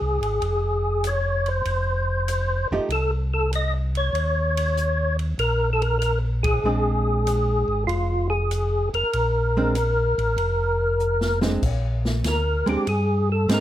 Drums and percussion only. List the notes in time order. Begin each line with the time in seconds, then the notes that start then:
0.23 ride
0.42 ride
1.04 hi-hat pedal, ride
1.46 ride
1.65 ride
2.28 hi-hat pedal, ride
2.90 ride
3.53 hi-hat pedal, ride
3.95 ride
4.15 ride
4.57 ride
4.77 hi-hat pedal
5.19 ride
5.39 ride
5.82 ride
6.02 hi-hat pedal, ride
6.44 kick, ride
7.27 hi-hat pedal, ride
7.89 ride
8.51 hi-hat pedal, ride
8.94 ride
9.13 ride
9.75 hi-hat pedal, ride
10.19 ride
10.38 ride
11.00 hi-hat pedal
11.21 snare
11.41 snare
11.62 kick, crash
12.05 snare
12.24 snare, hi-hat pedal, ride
12.67 ride
12.87 ride
13.49 snare, hi-hat pedal, ride